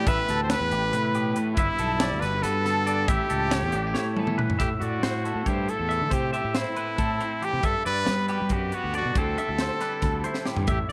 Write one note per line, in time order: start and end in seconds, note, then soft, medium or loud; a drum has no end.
0.00 2.26 E3 medium
0.00 0.10 A3 medium
0.00 1.58 B3 soft
0.00 0.08 G4 medium
0.07 0.17 A1 loud
0.07 0.92 A2 medium
0.07 0.30 G4 medium
0.07 0.42 B4 loud
0.07 0.29 E5 loud
0.07 kick loud
0.07 closed hi-hat loud
0.28 0.58 D2 medium
0.28 0.72 G4 medium
0.28 0.51 A4 medium
0.28 snare soft
0.28 closed hi-hat medium
0.43 0.52 C5 medium
0.50 1.61 A3 medium
0.50 1.37 B4 loud
0.50 0.72 B4 medium
0.50 snare loud
0.50 closed hi-hat medium
0.60 0.71 E2 medium
0.71 0.91 A1 medium
0.71 0.94 G4 medium
0.71 2.22 G4 medium
0.71 closed hi-hat medium
0.92 1.54 A2 medium
0.92 1.14 C3 medium
0.92 1.15 B4 medium
0.92 closed hi-hat medium
1.15 1.36 B2 medium
1.15 1.36 G4 medium
1.15 closed hi-hat medium
1.36 1.58 A2 medium
1.36 1.58 B4 medium
1.36 closed hi-hat medium
1.54 1.67 G1 medium
1.54 2.22 E4 medium
1.54 1.80 E5 medium
1.54 kick loud
1.54 closed hi-hat medium
1.58 3.08 G2 medium
1.58 1.78 B3 medium
1.79 2.09 B1 medium
1.79 2.64 B3 medium
1.79 2.01 A4 medium
1.79 closed hi-hat medium
2.00 3.52 G3 medium
2.00 2.23 D5 medium
2.00 snare loud
2.00 closed hi-hat medium
2.11 2.21 D2 medium
2.21 2.43 G1 medium
2.21 2.44 F#4 medium
2.21 2.44 B4 medium
2.21 2.43 B4 medium
2.21 snare soft
2.21 closed hi-hat medium
2.42 3.05 G2 loud
2.42 2.88 F#4 medium
2.42 3.10 A4 loud
2.42 2.66 B4 medium
2.42 closed hi-hat loud
2.65 3.08 D3 medium
2.65 3.09 B3 medium
2.65 2.88 A4 medium
2.65 snare soft
2.65 closed hi-hat medium
2.87 3.07 F#4 medium
2.87 3.08 D5 medium
2.87 closed hi-hat medium
3.08 3.18 A1 loud
3.08 4.58 A2 medium
3.08 3.29 E4 medium
3.08 4.17 G4 medium
3.08 3.30 E5 medium
3.08 kick loud
3.08 closed hi-hat loud
3.30 3.60 C#2 medium
3.30 3.74 E4 medium
3.30 3.50 A4 medium
3.30 closed hi-hat medium
3.50 4.58 A3 medium
3.50 3.73 C#5 medium
3.50 snare loud
3.50 closed hi-hat medium
3.63 3.73 E2 medium
3.72 3.93 A1 loud
3.72 3.87 D4 medium
3.72 3.95 G4 medium
3.72 closed hi-hat medium
3.87 3.96 E4 soft
3.94 4.56 A2 loud
3.94 4.58 E4 medium
3.94 4.17 C#5 medium
3.94 snare medium
4.17 4.59 E3 medium
4.17 4.27 B3 medium
4.17 4.38 A4 medium
4.17 high tom medium
4.27 4.60 C#4 medium
4.27 mid tom medium
4.38 4.60 B4 medium
4.38 mid tom medium
4.50 floor tom medium
4.59 4.70 A2 medium
4.59 6.09 A2 medium
4.59 4.69 G4 medium
4.59 4.81 E5 medium
4.59 kick medium
4.59 closed hi-hat medium
4.80 5.02 A2 medium
4.80 5.48 F#4 medium
4.80 5.03 D5 medium
4.80 closed hi-hat soft
5.03 5.33 A2 medium
5.03 5.26 E4 medium
5.03 5.24 C5 medium
5.03 snare medium
5.03 closed hi-hat medium
5.24 6.77 A3 soft
5.24 5.47 E4 soft
5.24 5.46 A4 medium
5.24 closed hi-hat soft
5.35 5.46 A2 medium
5.46 5.67 G2 medium
5.46 5.69 E4 medium
5.46 5.71 G4 medium
5.46 5.68 C5 medium
5.46 kick medium
5.46 closed hi-hat medium
5.68 6.10 E4 medium
5.68 5.90 A4 medium
5.68 6.14 A4 medium
5.68 closed hi-hat medium
5.79 5.99 E2 medium
5.89 6.10 E3 medium
5.89 6.11 E5 medium
5.89 closed hi-hat soft
6.01 6.11 D3 medium
6.11 7.62 A2 medium
6.11 6.32 C3 medium
6.11 6.32 G4 medium
6.11 6.33 C5 medium
6.11 kick loud
6.11 closed hi-hat medium
6.33 6.59 G4 medium
6.33 6.55 E5 medium
6.33 closed hi-hat medium
6.44 6.64 A2 medium
6.55 6.77 C4 medium
6.55 7.46 E4 medium
6.55 6.76 C5 medium
6.55 snare medium
6.55 closed hi-hat medium
6.76 7.67 A3 medium
6.76 6.98 C4 soft
6.76 6.98 B4 medium
6.76 closed hi-hat medium
6.98 7.19 A2 medium
6.98 7.19 C4 medium
6.98 7.21 A4 medium
6.98 kick medium
6.98 closed hi-hat medium
7.20 7.61 C4 medium
7.20 7.42 C5 medium
7.20 closed hi-hat medium
7.41 7.61 E3 medium
7.41 7.64 G4 medium
7.41 7.67 G4 medium
7.41 closed hi-hat medium
7.53 7.63 C3 medium
7.63 7.74 G2 medium
7.63 9.16 G2 medium
7.63 7.85 A4 medium
7.63 7.85 E5 medium
7.63 kick loud
7.63 closed hi-hat medium
7.85 8.06 G2 medium
7.85 8.26 B4 loud
7.85 8.07 D5 medium
7.85 closed hi-hat medium
8.06 8.38 G3 medium
8.06 8.72 B3 medium
8.06 8.29 B4 medium
8.06 snare medium
8.06 closed hi-hat medium
8.28 9.16 G3 medium
8.28 8.50 F#4 soft
8.28 8.51 G4 medium
8.28 8.54 B4 medium
8.28 closed hi-hat medium
8.42 8.50 G3 medium
8.49 8.71 F#2 medium
8.49 9.14 F#4 medium
8.49 8.76 G4 medium
8.49 8.72 B4 medium
8.49 kick medium
8.49 closed hi-hat medium
8.72 9.16 B3 medium
8.72 8.95 F#4 medium
8.72 8.94 G4 medium
8.72 closed hi-hat soft
8.84 9.04 D2 medium
8.94 9.15 D3 medium
8.94 9.20 F#4 medium
8.94 9.16 D5 medium
8.94 closed hi-hat medium
9.05 9.15 B2 medium
9.15 9.36 D2 medium
9.15 10.68 D3 medium
9.15 9.80 G3 medium
9.15 9.61 C4 medium
9.15 9.81 E4 medium
9.15 10.49 G4 medium
9.15 10.48 A4 medium
9.15 9.38 C5 medium
9.15 kick loud
9.15 closed hi-hat medium
9.38 9.60 E5 medium
9.38 closed hi-hat medium
9.49 9.69 D2 medium
9.59 10.92 C4 soft
9.59 9.81 C5 medium
9.59 snare medium
9.59 closed hi-hat medium
9.80 10.92 G3 medium
9.80 9.92 D4 medium
9.80 10.03 B4 medium
9.80 snare soft
9.80 closed hi-hat medium
9.92 10.25 E4 soft
10.02 10.23 D2 medium
10.02 10.24 A4 medium
10.02 kick medium
10.02 snare soft
10.02 closed hi-hat medium
10.24 10.92 E4 medium
10.24 10.46 C5 medium
10.24 closed hi-hat medium
10.34 snare medium
10.45 10.65 A2 medium
10.45 10.68 G4 medium
10.45 snare medium
10.56 10.67 G2 medium
10.56 floor tom loud
10.67 10.78 A1 medium
10.67 10.92 A2 medium
10.67 10.79 G4 medium
10.67 10.89 E5 medium
10.67 kick loud
10.67 closed hi-hat medium